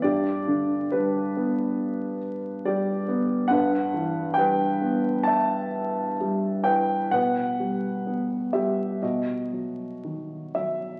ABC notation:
X:1
M:4/4
L:1/8
Q:1/4=66
K:Em
V:1 name="Grand piano"
[Gd]2 [DB]3 z [Gd]2 | [Bf]2 [Bg]2 [ea]2 z [Bg] | [Bf]3 [Ge] [F^d]3 e |]
V:2 name="Grand piano" clef=bass
G,, D, G, B,3 G, B, | G,, E, G, B,3 G, E | B,, G, B, G, B,, F, ^D, F, |]